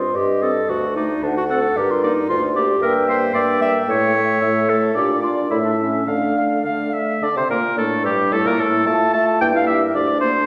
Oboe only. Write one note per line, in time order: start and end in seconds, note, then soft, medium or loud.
0.42 0.52 D#5 soft
0.96 1.06 D5 soft
1.50 1.60 F#5 soft
2.04 2.13 D5 soft
2.56 2.65 D5 soft
2.82 3.07 E5 soft
3.08 3.34 E5 medium
3.34 3.61 E5 soft
3.61 3.88 E5 soft
3.89 4.15 E5 soft
4.15 4.42 E5 soft
4.42 4.67 E5 soft
4.68 4.94 E5 soft
4.94 5.22 D5 soft
5.22 5.50 D5 soft
5.51 5.79 E5 soft
5.79 6.06 E5 soft
6.07 6.36 F5 soft
6.38 6.64 F5 soft
6.65 6.95 F5 medium
6.93 7.25 E5 medium
7.23 7.37 D5 medium
7.37 7.50 C5 medium
7.50 7.77 A#4 medium
7.78 8.05 A4 soft
8.05 8.34 G4 medium
8.33 8.48 A4 medium
8.47 8.61 A#4 medium
8.60 8.86 A4 medium
8.87 9.13 A5 medium
9.13 9.26 A5 medium
9.41 9.47 G5 medium
9.56 9.66 F5 medium
9.67 9.79 E5 medium
9.95 10.20 D5 medium
10.21 10.46 C5 medium